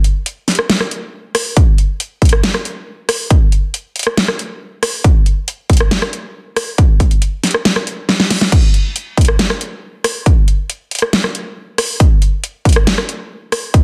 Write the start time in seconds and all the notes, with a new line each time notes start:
0.04 closed hi-hat
0.26 closed hi-hat
0.48 snare, closed hi-hat, open hi-hat
0.55 cross-stick, closed hi-hat
0.70 snare, closed hi-hat
0.80 cross-stick
0.91 closed hi-hat
1.35 cross-stick, open hi-hat
1.57 kick, closed hi-hat
1.78 closed hi-hat
2.00 closed hi-hat
2.22 kick, closed hi-hat
2.25 closed hi-hat
2.29 cross-stick, closed hi-hat
2.43 snare, closed hi-hat
2.54 cross-stick
2.65 closed hi-hat
3.09 cross-stick, open hi-hat
3.30 kick, closed hi-hat
3.52 closed hi-hat
3.74 closed hi-hat
3.96 closed hi-hat
3.99 closed hi-hat
4.03 cross-stick, closed hi-hat
4.17 snare, closed hi-hat
4.28 cross-stick
4.39 closed hi-hat
4.83 cross-stick, open hi-hat
5.04 kick, closed hi-hat
5.26 closed hi-hat
5.48 closed hi-hat
5.70 kick, closed hi-hat
5.73 closed hi-hat
5.77 cross-stick, closed hi-hat
5.91 snare, closed hi-hat
6.02 cross-stick
6.13 closed hi-hat
6.56 cross-stick, open hi-hat
6.78 kick, closed hi-hat
7.00 kick, closed hi-hat
7.11 closed hi-hat
7.22 closed hi-hat
7.44 snare, closed hi-hat, open hi-hat
7.51 cross-stick, closed hi-hat
7.65 snare, closed hi-hat
7.76 cross-stick
7.87 closed hi-hat
8.09 snare
8.20 snare
8.30 snare, open hi-hat
8.41 snare
8.52 kick, closed hi-hat, crash
8.74 closed hi-hat
8.96 closed hi-hat
9.17 kick, closed hi-hat
9.21 closed hi-hat
9.25 cross-stick, closed hi-hat
9.39 snare, closed hi-hat
9.50 cross-stick
9.61 closed hi-hat
10.04 cross-stick, open hi-hat
10.26 kick, closed hi-hat
10.48 closed hi-hat
10.70 closed hi-hat
10.91 closed hi-hat
10.95 closed hi-hat
10.99 cross-stick, closed hi-hat
11.13 snare, closed hi-hat
11.24 cross-stick
11.35 closed hi-hat
11.78 cross-stick, open hi-hat
12.00 kick, closed hi-hat
12.22 closed hi-hat
12.44 closed hi-hat
12.65 kick, closed hi-hat
12.69 closed hi-hat
12.73 cross-stick, closed hi-hat
12.87 snare, closed hi-hat
12.98 cross-stick
13.09 closed hi-hat
13.52 cross-stick, open hi-hat
13.74 kick, closed hi-hat